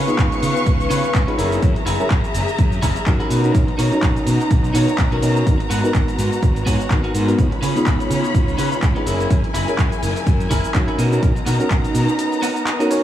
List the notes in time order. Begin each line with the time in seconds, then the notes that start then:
Already playing: C#4 F4 G#4 B4 F5 C#6
0.07 B3 D#4 F4 G#4, muted fingered electric bass stroke, closed hi-hat, shaker
0.18 C#2, kick, clap, closed hi-hat, shaker
0.32 closed hi-hat, shaker
0.42 C#3, open hi-hat, shaker
0.56 closed hi-hat, shaker
0.66 C#2, kick, closed hi-hat, shaker
0.80 closed hi-hat, shaker
0.90 C#3 C#4 F4 G#4 B4, open hi-hat, shaker
1.04 muted fingered electric bass stroke, closed hi-hat, shaker
1.14 C#2, kick, clap, closed hi-hat, shaker
1.27 B3 C#4 D#4 F4 G#4 B4, closed hi-hat
1.38 F#1 C#4 E4 F#4 G#4 A#4 E5 A#5, open hi-hat, shaker
1.52 closed hi-hat, shaker
1.62 F#2 C#4 E4 G#4 A#4, kick, closed hi-hat, shaker
1.75 muted clean electric guitar stroke, closed hi-hat
1.86 F#1 E4 F#4 G#4 A#4, open hi-hat, shaker
2.00 C#4 E4 G#4 A#4, muted fingered electric bass stroke, closed hi-hat, shaker
2.10 F#2, kick, clap, closed hi-hat, shaker
2.24 closed hi-hat, shaker
2.34 F#1, open hi-hat, shaker
2.48 closed hi-hat, shaker
2.58 F#2, kick, closed hi-hat, shaker
2.72 closed hi-hat, shaker
2.82 F#1 E4 F#4 G#4 A#4, kick, open hi-hat, shaker
2.96 muted fingered electric bass stroke, closed hi-hat, shaker
3.06 F#2 C#4 D#4 F#4 A#4, kick, clap, closed hi-hat, shaker
3.20 E4 F#4 G#4 A#4, closed hi-hat
3.30 B2 B3 D#4 F#4 A#4 B4 A#5, open hi-hat, shaker
3.44 C#4 D#4 F#4 A#4, closed hi-hat, shaker
3.54 B1 C#4 D#4 F#4 A#4, kick, closed hi-hat, shaker
3.67 muted clean electric guitar stroke, closed hi-hat
3.78 B2 D#4 F#4 A#4 C#5, open hi-hat, shaker
3.92 C#4 D#4 F#4 A#5, muted fingered electric bass stroke, closed hi-hat, shaker
4.03 B1, kick, clap, closed hi-hat, shaker
4.16 closed hi-hat, shaker
4.26 B2, open hi-hat, shaker
4.40 closed hi-hat, shaker
4.51 B1, kick, closed hi-hat, shaker
4.64 closed hi-hat, shaker
4.74 B2 D#4 F#4 A#4 C#5 F#5, open hi-hat, shaker
4.88 muted fingered electric bass stroke, closed hi-hat, shaker
4.98 B1 D#5, kick, clap, closed hi-hat, shaker
5.11 C#4 D#4 F#4 A#4 C#5, closed hi-hat
5.22 B2 C#4 D#4 F#4 A#4 C#5, open hi-hat, shaker
5.36 closed hi-hat, shaker
5.46 G#1 B3 D#4 F#4 A#4, kick, closed hi-hat, shaker
5.59 muted clean electric guitar stroke, closed hi-hat
5.70 G#2 B3 F#4 G#4 B4, open hi-hat, shaker
5.83 B3 D#4 F#4 A#4, muted fingered electric bass stroke, closed hi-hat, shaker
5.95 G#1, kick, clap, closed hi-hat, shaker
6.08 closed hi-hat, shaker
6.18 G#2, open hi-hat, shaker
6.32 closed hi-hat, shaker
6.42 G#1, kick, closed hi-hat, shaker
6.56 closed hi-hat, shaker
6.66 G#2 B3 F#4 G#4 C#5, kick, open hi-hat, shaker
6.80 muted fingered electric bass stroke, closed hi-hat, shaker
6.90 G#1 B3 D#4 F#4 A#4, kick, clap, closed hi-hat, shaker
7.03 B3 F#4 G#4 A#4, closed hi-hat
7.14 G#2, open hi-hat, shaker
7.27 B3 D#4 F#4 A#4, closed hi-hat, shaker
7.38 C#2 B3 D#4 F4 G#4 C#5 B5, kick, closed hi-hat, shaker
7.51 muted clean electric guitar stroke, closed hi-hat
7.62 C#3 C#4 F4 G#4 B4, open hi-hat, shaker
7.75 B3 D#4 F4 G#4, muted fingered electric bass stroke, closed hi-hat, shaker
7.86 C#2, kick, clap, closed hi-hat, shaker
8.00 closed hi-hat, shaker
8.10 C#3, open hi-hat, shaker
8.24 closed hi-hat, shaker
8.34 C#2, kick, closed hi-hat, shaker
8.48 closed hi-hat, shaker
8.58 C#3 C#4 F4 G#4 B4, open hi-hat, shaker
8.72 muted fingered electric bass stroke, closed hi-hat, shaker
8.82 C#2, kick, clap, closed hi-hat, shaker
8.95 B3 C#4 D#4 F4 G#4 B4, closed hi-hat
9.06 F#1 C#4 E4 F#4 G#4 A#4 G#5, open hi-hat, shaker
9.20 closed hi-hat, shaker
9.30 F#2 C#4 E4 G#4 A#4, kick, closed hi-hat, shaker
9.44 muted clean electric guitar stroke, closed hi-hat
9.54 F#1 E4 F#4 G#4 A#4, open hi-hat, shaker
9.68 C#4 E4 G#4 A#4, muted fingered electric bass stroke, closed hi-hat, shaker
9.79 F#2, kick, clap, closed hi-hat, shaker
9.92 closed hi-hat, shaker
10.03 F#1, open hi-hat, shaker
10.16 closed hi-hat, shaker
10.27 F#2, kick, closed hi-hat, shaker
10.40 closed hi-hat, shaker
10.50 F#1 E4 F#4 G#4 A#4, kick, open hi-hat, shaker
10.64 muted fingered electric bass stroke, closed hi-hat, shaker
10.74 F#2 C#4 D#4 F#4 A#4, kick, clap, closed hi-hat, shaker
10.87 E4 F#4 G#4 A#4, closed hi-hat
10.98 B2 B3 D#4 F#4 A#4 A#5, open hi-hat, shaker
11.12 C#4 D#4 F#4 A#4, closed hi-hat, shaker
11.22 B1 C#4 D#4 F#4 A#4, kick, closed hi-hat, shaker
11.35 muted clean electric guitar stroke, closed hi-hat, shaker
11.46 B2 B3 D#4 F#4 A#4, open hi-hat, shaker
11.59 C#4 D#4 F#4 A#4, muted fingered electric bass stroke, closed hi-hat, shaker
11.71 B1, kick, clap, closed hi-hat, shaker
11.84 closed hi-hat, shaker
11.95 B2, open hi-hat, shaker
12.08 closed hi-hat, shaker
12.19 closed hi-hat, shaker
12.32 closed hi-hat, shaker
12.42 B3 D#4 F#4 A#4 F#5, open hi-hat, shaker
12.56 closed hi-hat, shaker
12.67 D#5, clap, closed hi-hat, shaker
12.80 B3 C#4 D#4 F#4 A#4, closed hi-hat, shaker
12.90 C#4 D#4 F#4 A#4 C#5, open hi-hat, shaker